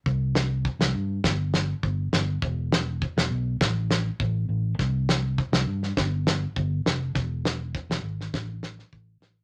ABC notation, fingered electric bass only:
X:1
M:4/4
L:1/16
Q:1/4=102
K:C
V:1 name="Fingered electric bass" clef=bass
C,,4- C,, C,, G,,2 G,,,4 G,,,2 G,,,2 | E,,,4- E,,, E,,, B,,,2 A,,,4 A,,,2 A,,,2 | C,,4- C,, C,, G,,2 G,,,4 G,,,2 F,,,2 | E,,,4- E,,, E,,, ^G,,,2 A,,,4 A,,,2 A,,,2 |]